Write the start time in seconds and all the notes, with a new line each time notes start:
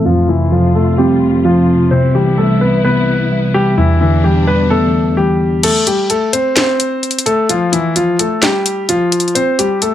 Already playing: A3
0.05 F2 C3 F3 F4
0.28 C3 E3 E4
0.52 F3 F4
0.75 A3 A4
0.98 G3 C4 G4
1.45 F3 F4
1.91 C2 C3 B3 C4 E4 C5
2.15 E3 G3 G4
2.38 G3 A3 A4
2.61 B3 B4
2.84 C3 B3 B4
3.31 G3
3.54 G3 G4
3.77 E2 B2 E3 G3 D4 E4
4.01 D3 E3 E4
4.24 E3 G3 G4
4.47 G3 B3 B4
4.70 A3 B3 A4
5.17 E3 G3 G4
5.63 A3 A4, closed hi-hat, crash
5.87 G3 G4, closed hi-hat
6.10 A3 A4, closed hi-hat
6.33 C4 C5, closed hi-hat
6.56 C4 C5, snare, clap, closed hi-hat
6.80 closed hi-hat
7.03 closed hi-hat
7.11 closed hi-hat
7.19 closed hi-hat
7.26 A3 A4, closed hi-hat
7.49 F3 F4, closed hi-hat
7.72 E3 E4, closed hi-hat
7.96 F3 F4, closed hi-hat
8.19 A3 A4, closed hi-hat
8.42 G3 G4, snare, clap, closed hi-hat
8.66 closed hi-hat
8.89 F3 F4, closed hi-hat
9.12 closed hi-hat, open hi-hat
9.20 closed hi-hat
9.28 closed hi-hat
9.35 C4 C5, closed hi-hat
9.59 G3 G4, closed hi-hat
9.82 A3 A4, closed hi-hat